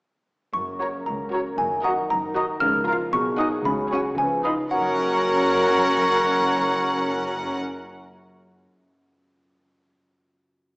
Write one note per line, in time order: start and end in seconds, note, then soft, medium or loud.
0.54 0.96 F#1 soft
0.54 0.96 F#2 medium
0.54 1.57 F#2 soft
0.54 1.55 C#3 soft
0.54 2.58 A#4 soft
0.54 1.03 C#6 medium
0.72 1.75 A#3 soft
0.79 1.00 F#4 soft
0.79 0.90 F#4 soft
0.79 1.01 A#4 soft
0.79 0.89 C#5 soft
0.79 1.00 C#5 soft
0.79 0.86 A#5 soft
0.89 1.23 C#4 soft
1.06 1.48 C#2 medium
1.06 1.41 A#4 soft
1.06 1.54 A#5 medium
1.24 1.60 C#4 soft
1.31 1.51 F#4 medium
1.31 1.42 F#4 soft
1.31 1.52 A#4 soft
1.31 1.42 C#5 soft
1.31 1.52 C#5 soft
1.31 1.38 A#5 soft
1.42 2.08 A#4 soft
1.57 1.98 F#1 medium
1.57 2.63 F#2 medium
1.57 1.99 F#2 medium
1.57 2.62 D#3 soft
1.57 1.82 G#5 medium
1.76 2.78 A#3 soft
1.83 1.93 F#4 soft
1.83 2.03 F#4 soft
1.83 2.04 A#4 medium
1.83 1.93 D#5 soft
1.83 2.03 D#5 medium
1.83 2.08 F#5 medium
1.83 1.90 A#5 soft
1.93 2.26 D#4 soft
2.09 2.50 F#1 medium
2.09 2.51 F#2 medium
2.09 2.43 A#4 soft
2.09 2.58 A#5 medium
2.27 2.64 D#4 medium
2.35 2.45 F#4 soft
2.35 2.55 F#4 medium
2.35 2.54 A#4 medium
2.35 2.55 D#5 medium
2.35 2.45 D#5 medium
2.35 2.41 A#5 soft
2.45 2.95 A#4 soft
2.60 3.01 C#2 medium
2.60 3.02 C#3 medium
2.60 3.15 C#3 medium
2.60 3.12 F3 medium
2.60 3.11 A#4 medium
2.60 3.09 F6 medium
2.79 3.15 A#3 soft
2.85 2.96 F4 medium
2.85 3.06 F4 medium
2.85 3.05 A#4 medium
2.85 2.97 F5 medium
2.85 3.07 F5 medium
2.85 2.92 A#5 medium
2.96 3.15 F4 soft
2.96 3.15 A#4 soft
3.11 3.53 B1 medium
3.11 3.54 B2 medium
3.11 3.68 B2 medium
3.11 4.17 F#3 medium
3.11 4.17 G#4 medium
3.11 3.61 C#6 medium
3.31 3.68 D#4 soft
3.38 3.58 D#4 medium
3.38 3.48 F#4 soft
3.38 3.58 G#4 medium
3.38 3.48 D#5 medium
3.38 3.58 F#5 medium
3.38 3.45 G#5 soft
3.48 4.00 F#4 soft
3.48 4.00 G#4 soft
3.63 4.06 C#2 medium
3.63 4.07 C#3 medium
3.63 4.17 C#3 medium
3.63 4.14 B5 medium
3.83 4.85 C#4 soft
3.90 4.10 C#4 medium
3.90 4.01 F#4 soft
3.90 4.11 G#4 medium
3.90 4.01 C#5 soft
3.90 4.11 F#5 medium
3.90 3.97 G#5 medium
4.01 4.20 F#4 soft
4.01 4.74 G#4 soft
4.16 4.60 C#2 medium
4.16 4.60 C#3 medium
4.16 4.74 C#3 medium
4.16 4.44 F3 medium
4.16 4.44 B4 medium
4.16 4.68 G#5 medium
4.37 4.74 D#4 soft
4.43 4.64 D#4 medium
4.43 4.55 F4 soft
4.43 4.64 B4 medium
4.43 4.54 D#5 soft
4.43 4.65 F5 medium
4.43 4.50 B5 soft
4.54 4.74 F4 soft
4.54 4.74 B4 soft
4.71 7.57 F#1 medium
4.71 7.57 F#2 medium
4.71 8.62 F#2 medium
4.71 7.57 F#3 medium
4.71 7.57 C#4 medium
4.71 7.57 F#4 medium
4.71 7.57 A#4 medium
4.71 7.57 C#5 medium
4.71 7.85 F#5 medium
4.71 7.57 F#5 medium
4.71 7.57 A#5 medium
4.79 8.49 F#3 soft
4.86 8.00 C#4 soft
4.93 8.07 F#4 medium
5.00 8.14 A#4 soft
5.07 8.21 F#5 soft